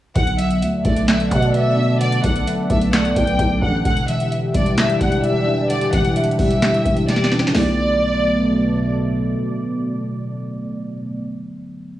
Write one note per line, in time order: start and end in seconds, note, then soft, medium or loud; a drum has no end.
0.16 0.64 B1 loud
0.16 1.07 D3 medium
0.16 3.81 B3 medium
0.16 3.81 A4 medium
0.16 3.81 D5 medium
0.16 0.59 F#5 loud
0.16 0.35 F#5 loud
0.16 kick loud
0.16 closed hi-hat medium
0.27 closed hi-hat medium
0.39 1.54 F#3 medium
0.39 0.58 E5 medium
0.39 closed hi-hat medium
0.51 closed hi-hat medium
0.62 0.84 D2 loud
0.62 1.05 E5 medium
0.62 closed hi-hat medium
0.85 1.29 B1 loud
0.85 2.01 A3 loud
0.85 1.04 D5 medium
0.85 kick medium
0.85 closed hi-hat medium
0.97 closed hi-hat medium
1.08 1.99 D3 medium
1.08 1.97 D5 loud
1.08 1.28 E5 medium
1.08 snare loud
1.08 clap medium
1.08 closed hi-hat medium
1.20 closed hi-hat medium
1.31 2.20 B2 loud
1.31 1.50 F#5 medium
1.31 kick medium
1.31 closed hi-hat medium
1.42 closed hi-hat medium
1.54 1.98 E5 medium
1.54 closed hi-hat medium
1.77 2.93 D4 medium
2.00 2.92 D3 medium
2.00 2.20 D5 loud
2.00 2.44 F#5 loud
2.00 closed hi-hat medium
2.12 closed hi-hat medium
2.23 2.46 B1 loud
2.23 3.39 F#3 medium
2.23 2.43 F#5 medium
2.23 kick loud
2.23 closed hi-hat medium
2.35 closed hi-hat medium
2.47 2.90 E5 medium
2.47 closed hi-hat medium
2.70 3.14 B1 loud
2.70 3.85 A3 loud
2.70 2.89 E5 medium
2.70 kick loud
2.70 closed hi-hat medium
2.81 closed hi-hat medium
2.93 3.84 D3 medium
2.93 3.36 D5 medium
2.93 3.12 F#5 medium
2.93 snare loud
2.93 clap medium
2.93 closed hi-hat medium
3.05 closed hi-hat medium
3.16 3.38 B1 loud
3.16 3.59 G5 medium
3.16 kick medium
3.16 closed hi-hat medium
3.27 closed hi-hat medium
3.39 3.61 B1 loud
3.39 kick loud
3.39 closed hi-hat medium
3.62 3.84 A1 loud
3.62 3.85 D4 medium
3.62 3.81 F#5 medium
3.62 kick medium
3.85 4.52 E1 loud
3.85 4.77 D3 medium
3.85 7.51 E3 medium
3.85 7.51 D4 medium
3.85 7.51 G4 medium
3.85 4.04 F#5 medium
3.85 4.29 F#5 loud
3.85 kick loud
3.85 closed hi-hat medium
3.97 closed hi-hat medium
4.08 5.23 E3 medium
4.08 4.28 E5 medium
4.08 closed hi-hat medium
4.20 closed hi-hat medium
4.31 4.75 E5 medium
4.31 closed hi-hat medium
4.54 4.99 E1 loud
4.54 5.70 G3 loud
4.54 4.74 D5 medium
4.54 kick loud
4.54 closed hi-hat medium
4.66 closed hi-hat medium
4.77 5.69 D3 medium
4.77 5.66 D5 medium
4.77 4.97 E5 medium
4.77 snare loud
4.77 clap medium
4.77 closed hi-hat medium
4.89 closed hi-hat medium
5.00 5.89 E1 loud
5.00 5.20 F#5 medium
5.00 kick medium
5.00 closed hi-hat medium
5.12 closed hi-hat medium
5.24 5.67 E5 medium
5.24 closed hi-hat medium
5.47 6.62 D4 medium
5.70 6.61 D3 medium
5.70 5.89 D5 loud
5.70 6.13 F#5 loud
5.70 closed hi-hat medium
5.81 closed hi-hat medium
5.93 6.37 E1 loud
5.93 7.08 E3 medium
5.93 6.12 F#5 medium
5.93 kick loud
5.93 closed hi-hat medium
6.05 closed hi-hat medium
6.16 7.04 E5 loud
6.16 closed hi-hat medium
6.24 closed hi-hat medium
6.31 closed hi-hat soft
6.39 6.83 E1 loud
6.39 7.54 G3 loud
6.39 7.04 E5 medium
6.39 kick loud
6.39 open hi-hat medium
6.51 closed hi-hat medium
6.62 7.47 D3 medium
6.62 snare loud
6.62 clap medium
6.62 closed hi-hat medium
6.74 closed hi-hat medium
6.85 7.52 E1 loud
6.85 kick medium
6.85 closed hi-hat medium
6.96 closed hi-hat medium
7.08 7.28 D5 medium
7.08 snare medium
7.08 closed hi-hat medium
7.16 snare medium
7.24 snare medium
7.31 7.54 D4 medium
7.31 snare medium
7.39 snare loud
7.47 11.00 D3 medium
7.47 snare loud
7.52 9.35 B1 loud
7.52 11.06 B2 medium
7.52 11.04 F#3 medium
7.52 11.06 A3 medium
7.52 8.89 D5 loud
7.52 11.06 D5 medium
7.52 snare loud
7.52 open hi-hat medium
7.56 11.08 A3 medium
7.60 11.12 B3 loud